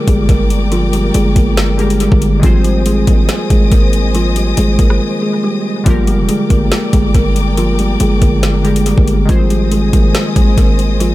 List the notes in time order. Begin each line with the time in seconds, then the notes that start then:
Already playing: D3 G3 A#3 G4 A#4 D5 G5 D6
0.07 G1 G#3 G#4, kick, closed hi-hat
0.29 G1 A#3 A#4, kick, closed hi-hat
0.50 closed hi-hat
0.72 F3 F4, closed hi-hat
0.93 G3 G4, closed hi-hat
1.14 G1 G#3 G#4, closed hi-hat
1.36 G1 A#3 A#4, kick, closed hi-hat
1.57 snare, closed hi-hat
1.77 D3 G3 G#3 A#3 G4 G#4 A#4, closed hi-hat
1.90 closed hi-hat
2.00 G3 G4, closed hi-hat
2.12 G1, kick
2.22 closed hi-hat
2.40 G#1 D#3 F3 G#3 C4 C5 D#5 G#5 D#6, kick, closed hi-hat
2.44 F4 G#4 C5
2.64 G3 G4, closed hi-hat
2.86 G#3 G#4, closed hi-hat
3.07 G#1 A#3 A#4, kick, closed hi-hat
3.29 snare, closed hi-hat
3.50 G#1 G#3 G#4, kick, closed hi-hat
3.72 G#1 A#3 A#4, kick, closed hi-hat
3.93 closed hi-hat
4.15 F3 F4, closed hi-hat
4.36 G3 G4, closed hi-hat
4.57 G#1 G#3 G#4, closed hi-hat
4.79 G#1 A#3 A#4, kick, closed hi-hat
4.90 cross-stick
5.22 G#3 G#4
5.43 G3 G4
5.84 G1 D3 F3 G3 A#3 F4 A#4 D5 G5 D6, kick, closed hi-hat
5.89 G4 A#4
6.07 G3 G4, closed hi-hat
6.19 F1
6.29 G#3 G#4, closed hi-hat
6.50 G1 A#3 A#4, kick, closed hi-hat
6.72 snare, closed hi-hat
6.93 G1 G#3 G#4, kick, closed hi-hat
7.14 G1 A#3 A#4, kick, closed hi-hat
7.36 closed hi-hat
7.57 F3 F4, closed hi-hat
7.79 G3 G4, closed hi-hat
8.00 G1 G#3 G#4, closed hi-hat
8.22 G1 A#3 A#4, kick, closed hi-hat
8.43 snare, closed hi-hat
8.63 D3 G3 G#3 A#3 G4 G#4 A#4, closed hi-hat
8.76 closed hi-hat
8.86 G3 G4, closed hi-hat
8.98 G1, kick
9.08 closed hi-hat
9.25 G#1 D#3 F3 G#3 C4 C5 D#5 G#5 D#6, kick, closed hi-hat
9.30 F4 G#4 C5
9.50 G3 G4, closed hi-hat
9.72 G#3 G#4, closed hi-hat
9.93 G#1 A#3 A#4, kick, closed hi-hat
10.15 snare, closed hi-hat
10.36 G#1 G#3 G#4, kick, closed hi-hat
10.57 G#1 A#3 A#4, kick, closed hi-hat
10.79 closed hi-hat
11.00 F3 F4, closed hi-hat